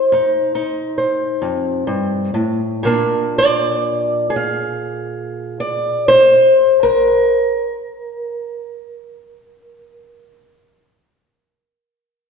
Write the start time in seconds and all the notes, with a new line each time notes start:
Already playing: D#4 C5
0.12 F2 D#4
0.55 D#4
0.98 C5
1.42 F2
1.87 G2
2.34 A2
2.83 A#2 A#3 D4
3.38 D5
4.30 G#4
4.36 F5
5.60 D5
6.08 C5
6.83 A#4